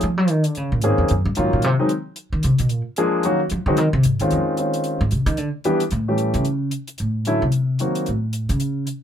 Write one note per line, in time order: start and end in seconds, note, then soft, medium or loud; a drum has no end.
0.01 0.18 F3 medium
0.01 closed hi-hat soft
0.18 0.30 F#3 loud
0.28 0.45 D#3 medium
0.28 closed hi-hat soft
0.44 0.57 D3 medium
0.44 closed hi-hat soft
0.55 0.71 C#3 medium
0.55 closed hi-hat soft
0.72 0.84 A#2 medium
0.82 0.97 G#2 medium
0.82 1.10 D#3 medium
0.82 1.10 A#3 medium
0.82 1.10 C4 medium
0.82 1.10 C#4 medium
0.82 1.10 G#4 medium
0.82 closed hi-hat medium
0.98 1.09 F2 medium
1.08 1.25 F#2 medium
1.08 closed hi-hat soft
1.25 1.36 G2 medium
1.35 1.52 G#2 medium
1.35 1.63 D#3 medium
1.35 1.63 F#3 medium
1.35 1.63 A#3 medium
1.35 1.63 C#4 medium
1.35 1.63 F4 medium
1.35 closed hi-hat medium
1.53 1.64 A#2 medium
1.62 1.74 C3 medium
1.62 closed hi-hat soft
1.79 1.89 D#3 medium
1.79 1.89 F#3 medium
1.79 1.89 G#3 medium
1.79 1.89 C4 medium
1.79 1.89 D#4 medium
1.89 closed hi-hat soft
2.16 closed hi-hat soft
2.33 2.43 D#3 medium
2.43 2.59 C3 medium
2.43 closed hi-hat medium
2.59 2.71 B2 medium
2.59 closed hi-hat medium
2.69 2.81 A#2 loud
2.69 closed hi-hat soft
2.96 3.24 F3 medium
2.96 3.24 G#3 medium
2.96 3.23 A#3 medium
2.96 3.24 D4 medium
2.96 3.24 G#4 medium
2.96 closed hi-hat soft
3.23 3.39 D#3 medium
3.23 3.39 F#3 medium
3.23 3.39 A#3 medium
3.23 3.39 C#4 medium
3.23 3.39 F#4 medium
3.23 closed hi-hat soft
3.50 3.65 F3 medium
3.50 closed hi-hat soft
3.66 3.78 D3 medium
3.66 3.76 D#3 medium
3.66 3.77 F#3 medium
3.66 3.77 G#3 medium
3.66 3.77 C4 medium
3.66 3.77 F#4 medium
3.77 3.93 D#3 loud
3.77 closed hi-hat soft
3.93 4.04 C3 loud
4.03 4.20 G#2 medium
4.03 closed hi-hat medium
4.20 4.30 D#2 medium
4.20 4.56 D#3 medium
4.20 4.56 G#3 medium
4.20 4.56 C4 medium
4.20 4.56 C#4 medium
4.20 4.56 F4 medium
4.20 closed hi-hat soft
4.31 4.41 F2 medium
4.31 closed hi-hat soft
4.57 4.98 D#3 medium
4.57 4.98 G#3 soft
4.57 4.98 C4 soft
4.57 4.98 C#4 medium
4.57 4.98 F4 medium
4.57 closed hi-hat soft
4.74 closed hi-hat soft
4.84 closed hi-hat soft
5.01 5.11 G#2 medium
5.11 5.26 C3 medium
5.11 closed hi-hat soft
5.26 5.38 D#3 loud
5.26 closed hi-hat soft
5.37 5.47 D3 medium
5.37 closed hi-hat soft
5.64 5.80 E3 medium
5.64 5.79 G3 medium
5.64 5.79 B3 medium
5.64 5.80 D4 medium
5.64 5.80 G4 medium
5.64 closed hi-hat soft
5.80 closed hi-hat soft
5.91 6.32 A2 medium
5.91 closed hi-hat soft
6.08 6.43 E3 medium
6.08 6.43 G3 medium
6.08 6.43 A3 medium
6.08 6.43 C#4 medium
6.08 6.44 G4 medium
6.18 closed hi-hat soft
6.34 6.69 C#3 medium
6.34 closed hi-hat soft
6.45 closed hi-hat soft
6.71 closed hi-hat medium
6.88 closed hi-hat soft
6.98 7.39 A2 medium
6.98 closed hi-hat soft
7.25 7.41 D3 medium
7.25 7.41 F#3 medium
7.25 7.41 A3 medium
7.25 7.41 C#4 medium
7.25 7.41 E4 medium
7.25 closed hi-hat soft
7.42 7.77 C3 medium
7.52 closed hi-hat soft
7.79 8.07 D#3 soft
7.79 8.07 F#3 soft
7.79 8.07 A#3 medium
7.79 8.07 C4 soft
7.79 8.07 F#4 medium
7.79 closed hi-hat soft
7.95 closed hi-hat soft
8.06 8.47 A2 medium
8.06 closed hi-hat soft
8.33 closed hi-hat soft
8.49 8.84 C#3 medium
8.49 closed hi-hat soft
8.60 closed hi-hat soft
8.87 closed hi-hat soft